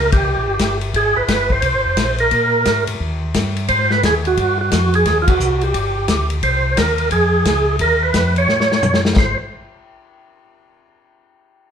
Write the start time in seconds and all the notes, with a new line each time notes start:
Already playing: C#2 A#4
0.12 G4, kick, ride
0.26 C2
0.37 A#1
0.48 G1
0.59 G1, kick, snare, hi-hat pedal, ride
0.81 ride
0.94 G#1 G#4, kick, ride
1.16 G#1 B4
1.28 G1, kick, snare, hi-hat pedal, ride
1.50 C5, kick
1.62 C2, kick, ride
1.74 G#1
1.86 F1
1.97 A#1, kick, snare, hi-hat pedal, ride
2.18 A#4, ride
2.31 A#2, kick, ride
2.65 G#2, kick, snare, hi-hat pedal, ride
2.87 G#2, ride
3.00 D#2, kick
3.34 G2, kick, snare, hi-hat pedal, ride
3.56 ride
3.68 G#2 C5, kick, ride
3.91 B4, snare
4.03 D#2 G#4, kick, snare, hi-hat pedal, ride
4.25 F#4, ride
4.37 G2, kick, ride
4.61 F#4
4.71 F2 F#4, kick, snare, hi-hat pedal, ride
4.94 G#4, ride
5.05 D#2, kick, snare, ride
5.22 F4
5.28 F#4, kick, ride
5.40 C2, hi-hat pedal
5.61 G4, ride
5.74 G1, kick, ride
6.08 D2, kick, snare, hi-hat pedal, ride
6.30 ride
6.43 C2 C5, kick, ride
6.77 D#2 A#4, kick, snare, hi-hat pedal, ride
6.98 ride
7.11 F2 G#4, kick, ride
7.45 C#2, kick, snare, hi-hat pedal, ride
7.79 D#2 A#4, kick, ride
8.03 B4
8.14 F2, kick, snare, hi-hat pedal, ride
8.36 C#5, ride
8.48 A2, snare
8.60 snare
8.72 snare
8.83 F#2, hi-hat pedal, mid tom
8.94 snare
9.05 snare
9.16 G#1 C5, kick, snare